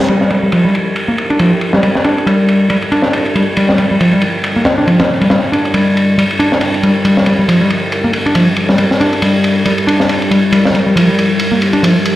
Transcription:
0.08 12.16 G3 medium
0.08 0.30 G3 medium
0.08 12.16 D4 medium
0.08 7.03 A#4 medium
0.08 ride medium
0.21 snare soft
0.30 0.35 G3 medium
0.30 ride medium
0.43 0.47 G3 medium
0.52 0.64 F3 medium
0.52 ride medium
0.65 0.74 G3 medium
0.75 ride medium
0.96 ride medium
1.08 1.14 A#3 medium
1.18 ride medium
1.30 1.39 D4 medium
1.30 ride soft
1.39 1.51 F3 medium
1.39 ride medium
1.61 ride medium
1.73 1.80 G3 medium
1.73 snare medium
1.83 1.88 G3 medium
1.83 ride medium
1.95 snare soft
2.04 2.26 D4 medium
2.04 ride medium
2.18 ride soft
2.26 2.69 G3 medium
2.26 ride medium
2.48 ride medium
2.70 2.75 G3 medium
2.70 ride medium
2.82 ride soft
2.92 3.34 D4 medium
2.92 ride medium
3.02 snare soft
3.13 ride medium
3.26 ride soft
3.35 3.43 G3 medium
3.35 ride medium
3.57 3.78 G3 medium
3.57 ride medium
3.69 snare soft
3.78 3.83 G3 medium
3.78 ride medium
3.91 3.95 G3 medium
4.00 4.12 F3 medium
4.00 ride medium
4.13 4.22 G3 medium
4.22 ride medium
4.44 ride medium
4.56 4.62 A#3 medium
4.65 snare medium
4.65 ride medium
4.78 4.86 D4 medium
4.87 4.99 F3 medium
4.87 ride medium
5.00 snare loud
5.00 ride medium
5.21 5.27 G3 medium
5.21 ride medium
5.30 5.35 G3 medium
5.30 snare medium
5.30 ride medium
5.52 5.73 D4 medium
5.52 ride medium
5.65 ride soft
5.74 6.17 G3 medium
5.74 ride medium
5.97 ride medium
6.18 6.22 G3 medium
6.18 ride medium
6.31 ride soft
6.39 6.82 D4 medium
6.39 ride medium
6.52 snare soft
6.61 ride medium
6.74 ride soft
6.83 6.91 G3 medium
6.83 ride medium
7.05 7.25 G3 medium
7.05 12.16 G4 medium
7.05 ride medium
7.17 snare soft
7.26 7.31 G3 medium
7.26 ride medium
7.39 7.42 G3 medium
7.48 7.60 F3 medium
7.48 ride medium
7.61 7.70 G3 medium
7.70 ride medium
7.92 ride medium
8.04 8.10 A#3 medium
8.13 ride medium
8.26 8.34 D4 medium
8.26 ride soft
8.35 8.47 F3 medium
8.35 ride medium
8.56 ride medium
8.69 8.75 G3 medium
8.69 snare soft
8.78 8.83 G3 medium
8.78 ride medium
8.91 snare soft
9.00 9.21 D4 medium
9.00 ride medium
9.13 ride soft
9.22 9.65 G3 medium
9.22 ride medium
9.44 ride medium
9.65 9.70 G3 medium
9.65 ride medium
9.78 ride soft
9.87 10.30 D4 medium
9.87 ride medium
10.00 snare soft
10.09 ride medium
10.22 ride soft
10.31 10.39 G3 medium
10.31 ride medium
10.52 10.73 G3 medium
10.52 ride medium
10.65 snare soft
10.74 10.79 G3 medium
10.74 ride medium
10.86 10.90 G3 medium
10.96 11.07 F3 medium
10.96 ride medium
11.08 11.17 G3 medium
11.19 ride medium
11.39 ride medium
11.51 11.58 A#3 medium
11.62 ride medium
11.73 11.82 D4 medium
11.73 ride soft
11.83 11.95 F3 medium
11.83 ride medium
12.05 ride medium

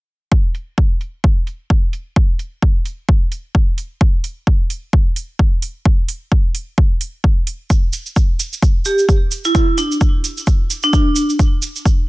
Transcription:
0.32 kick loud
0.55 open hi-hat loud
0.78 kick loud
1.01 open hi-hat medium
1.24 kick loud
1.47 open hi-hat medium
1.70 kick loud
1.93 open hi-hat loud
2.16 kick loud
2.39 open hi-hat loud
2.62 kick loud
2.85 open hi-hat loud
3.09 kick loud
3.32 open hi-hat loud
3.55 kick loud
3.78 open hi-hat loud
4.01 kick loud
4.24 open hi-hat loud
4.47 kick loud
4.70 open hi-hat loud
4.93 kick loud
5.16 open hi-hat loud
5.39 kick loud
5.62 open hi-hat loud
5.85 kick loud
6.08 open hi-hat loud
6.32 kick loud
6.55 open hi-hat loud
6.78 kick loud
7.01 open hi-hat loud
7.24 kick loud
7.47 open hi-hat loud
7.70 kick loud
7.70 cabasa soft
7.93 open hi-hat loud
7.93 cabasa medium
8.06 cabasa soft
8.16 kick loud
8.16 cabasa soft
8.39 open hi-hat medium
8.39 cabasa medium
8.53 cabasa medium
8.62 kick loud
8.62 cabasa soft
8.85 9.03 G4 medium
8.85 open hi-hat medium
8.85 cabasa medium
8.98 cabasa soft
9.09 kick loud
9.09 cabasa soft
9.31 open hi-hat loud
9.31 cabasa medium
9.44 9.76 E4 medium
9.44 cabasa soft
9.55 kick loud
9.55 cabasa soft
9.78 9.95 D4 medium
9.78 open hi-hat loud
9.78 cabasa medium
9.92 cabasa soft
10.01 kick loud
10.01 cabasa soft
10.24 open hi-hat medium
10.24 cabasa medium
10.37 cabasa soft
10.47 kick loud
10.47 cabasa soft
10.70 open hi-hat medium
10.70 cabasa medium
10.83 11.30 D4 medium
10.83 cabasa soft
10.93 kick loud
10.93 cabasa soft
11.16 open hi-hat loud
11.16 cabasa medium
11.29 cabasa soft
11.39 kick loud
11.39 cabasa soft
11.62 open hi-hat loud
11.62 cabasa medium
11.76 cabasa soft
11.85 kick loud
11.85 cabasa soft

